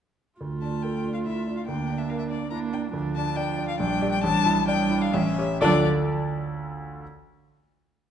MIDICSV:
0, 0, Header, 1, 5, 480
1, 0, Start_track
1, 0, Key_signature, -1, "minor"
1, 0, Tempo, 426136
1, 454, Time_signature, 3, 2, 24, 8
1, 4764, Tempo, 463679
1, 8777, End_track
2, 0, Start_track
2, 0, Title_t, "Violin"
2, 0, Program_c, 0, 40
2, 692, Note_on_c, 0, 81, 53
2, 924, Note_on_c, 0, 79, 58
2, 941, Note_off_c, 0, 81, 0
2, 1278, Note_off_c, 0, 79, 0
2, 1285, Note_on_c, 0, 77, 47
2, 1336, Note_off_c, 0, 77, 0
2, 1399, Note_on_c, 0, 76, 54
2, 1758, Note_off_c, 0, 76, 0
2, 1766, Note_on_c, 0, 77, 56
2, 1815, Note_off_c, 0, 77, 0
2, 1871, Note_on_c, 0, 79, 64
2, 2230, Note_on_c, 0, 76, 59
2, 2247, Note_off_c, 0, 79, 0
2, 2361, Note_on_c, 0, 77, 62
2, 2378, Note_off_c, 0, 76, 0
2, 2457, Note_off_c, 0, 77, 0
2, 2464, Note_on_c, 0, 76, 59
2, 2514, Note_off_c, 0, 76, 0
2, 2586, Note_on_c, 0, 74, 69
2, 2814, Note_off_c, 0, 74, 0
2, 2820, Note_on_c, 0, 82, 77
2, 2911, Note_off_c, 0, 82, 0
2, 3077, Note_on_c, 0, 79, 64
2, 3167, Note_off_c, 0, 79, 0
2, 3552, Note_on_c, 0, 81, 86
2, 3788, Note_on_c, 0, 79, 87
2, 3805, Note_off_c, 0, 81, 0
2, 4141, Note_off_c, 0, 79, 0
2, 4148, Note_on_c, 0, 77, 79
2, 4268, Note_off_c, 0, 77, 0
2, 4278, Note_on_c, 0, 79, 97
2, 4632, Note_off_c, 0, 79, 0
2, 4639, Note_on_c, 0, 79, 102
2, 4761, Note_off_c, 0, 79, 0
2, 4767, Note_on_c, 0, 81, 127
2, 5219, Note_off_c, 0, 81, 0
2, 5227, Note_on_c, 0, 79, 108
2, 5576, Note_on_c, 0, 77, 95
2, 5591, Note_off_c, 0, 79, 0
2, 5704, Note_on_c, 0, 76, 92
2, 5719, Note_off_c, 0, 77, 0
2, 6185, Note_off_c, 0, 76, 0
2, 6191, Note_on_c, 0, 74, 109
2, 6463, Note_off_c, 0, 74, 0
2, 8777, End_track
3, 0, Start_track
3, 0, Title_t, "Grand piano"
3, 0, Program_c, 1, 0
3, 459, Note_on_c, 1, 38, 38
3, 669, Control_c, 1, 64, 127
3, 699, Note_on_c, 1, 62, 32
3, 948, Note_on_c, 1, 69, 32
3, 1086, Note_off_c, 1, 62, 0
3, 1186, Note_on_c, 1, 62, 35
3, 1328, Note_off_c, 1, 69, 0
3, 1425, Note_on_c, 1, 64, 30
3, 1565, Note_off_c, 1, 62, 0
3, 1659, Note_on_c, 1, 62, 37
3, 1660, Note_off_c, 1, 64, 0
3, 1852, Note_off_c, 1, 38, 0
3, 1894, Note_off_c, 1, 62, 0
3, 1897, Note_on_c, 1, 38, 44
3, 1913, Control_c, 1, 64, 0
3, 2074, Control_c, 1, 64, 127
3, 2136, Note_on_c, 1, 62, 39
3, 2366, Note_on_c, 1, 70, 37
3, 2507, Note_off_c, 1, 62, 0
3, 2608, Note_on_c, 1, 62, 41
3, 2740, Note_off_c, 1, 70, 0
3, 2835, Note_on_c, 1, 64, 36
3, 2979, Note_off_c, 1, 62, 0
3, 3069, Note_off_c, 1, 64, 0
3, 3084, Note_on_c, 1, 62, 45
3, 3264, Note_off_c, 1, 38, 0
3, 3305, Note_on_c, 1, 38, 58
3, 3312, Note_off_c, 1, 62, 0
3, 3324, Control_c, 1, 64, 0
3, 3506, Control_c, 1, 64, 127
3, 3553, Note_on_c, 1, 62, 48
3, 3790, Note_on_c, 1, 74, 50
3, 3936, Note_off_c, 1, 62, 0
3, 4043, Note_on_c, 1, 62, 55
3, 4177, Note_off_c, 1, 74, 0
3, 4243, Note_off_c, 1, 38, 0
3, 4278, Note_off_c, 1, 62, 0
3, 4279, Note_on_c, 1, 34, 71
3, 4295, Control_c, 1, 64, 0
3, 4463, Control_c, 1, 64, 127
3, 4522, Note_on_c, 1, 67, 57
3, 4528, Note_on_c, 1, 74, 65
3, 4743, Note_off_c, 1, 67, 0
3, 4746, Note_off_c, 1, 74, 0
3, 4754, Note_off_c, 1, 34, 0
3, 4774, Note_on_c, 1, 33, 76
3, 4785, Control_c, 1, 64, 0
3, 4965, Control_c, 1, 64, 127
3, 4999, Note_on_c, 1, 64, 63
3, 5231, Note_on_c, 1, 74, 66
3, 5370, Note_off_c, 1, 64, 0
3, 5466, Note_on_c, 1, 64, 62
3, 5610, Note_off_c, 1, 74, 0
3, 5681, Note_off_c, 1, 33, 0
3, 5704, Note_on_c, 1, 33, 79
3, 5707, Note_off_c, 1, 64, 0
3, 5729, Control_c, 1, 64, 0
3, 5907, Control_c, 1, 64, 127
3, 5960, Note_on_c, 1, 67, 58
3, 5961, Note_on_c, 1, 73, 58
3, 6179, Note_off_c, 1, 67, 0
3, 6180, Note_off_c, 1, 73, 0
3, 6185, Note_off_c, 1, 33, 0
3, 6198, Note_on_c, 1, 74, 77
3, 6201, Note_on_c, 1, 50, 70
3, 6201, Note_on_c, 1, 69, 75
3, 6202, Note_on_c, 1, 38, 78
3, 6202, Note_on_c, 1, 81, 75
3, 6204, Note_on_c, 1, 65, 76
3, 6224, Control_c, 1, 64, 0
3, 6414, Control_c, 1, 64, 127
3, 6467, Note_off_c, 1, 74, 0
3, 6469, Note_off_c, 1, 38, 0
3, 6469, Note_off_c, 1, 50, 0
3, 6469, Note_off_c, 1, 69, 0
3, 6469, Note_off_c, 1, 81, 0
3, 6470, Note_off_c, 1, 65, 0
3, 7665, Control_c, 1, 64, 0
3, 8777, End_track
4, 0, Start_track
4, 0, Title_t, "Viola"
4, 0, Program_c, 2, 41
4, 444, Note_on_c, 2, 65, 43
4, 1896, Note_on_c, 2, 62, 50
4, 1913, Note_off_c, 2, 65, 0
4, 2824, Note_off_c, 2, 62, 0
4, 2831, Note_on_c, 2, 62, 54
4, 3293, Note_off_c, 2, 62, 0
4, 3308, Note_on_c, 2, 62, 56
4, 4254, Note_off_c, 2, 62, 0
4, 4274, Note_on_c, 2, 62, 63
4, 4756, Note_off_c, 2, 62, 0
4, 4771, Note_on_c, 2, 62, 77
4, 5213, Note_off_c, 2, 62, 0
4, 5219, Note_on_c, 2, 62, 67
4, 5704, Note_on_c, 2, 61, 71
4, 5720, Note_off_c, 2, 62, 0
4, 5972, Note_off_c, 2, 61, 0
4, 6194, Note_on_c, 2, 62, 86
4, 6465, Note_off_c, 2, 62, 0
4, 8777, End_track
5, 0, Start_track
5, 0, Title_t, "Cello"
5, 0, Program_c, 3, 42
5, 460, Note_on_c, 3, 57, 42
5, 1851, Note_off_c, 3, 57, 0
5, 1897, Note_on_c, 3, 58, 49
5, 2816, Note_off_c, 3, 58, 0
5, 2847, Note_on_c, 3, 58, 54
5, 3302, Note_off_c, 3, 58, 0
5, 3308, Note_on_c, 3, 53, 59
5, 4279, Note_on_c, 3, 55, 71
5, 4296, Note_off_c, 3, 53, 0
5, 4763, Note_off_c, 3, 55, 0
5, 4770, Note_on_c, 3, 55, 78
5, 5220, Note_off_c, 3, 55, 0
5, 5237, Note_on_c, 3, 55, 79
5, 5701, Note_off_c, 3, 55, 0
5, 5715, Note_on_c, 3, 55, 72
5, 5798, Note_off_c, 3, 55, 0
5, 6200, Note_on_c, 3, 53, 75
5, 6468, Note_off_c, 3, 53, 0
5, 8777, End_track
0, 0, End_of_file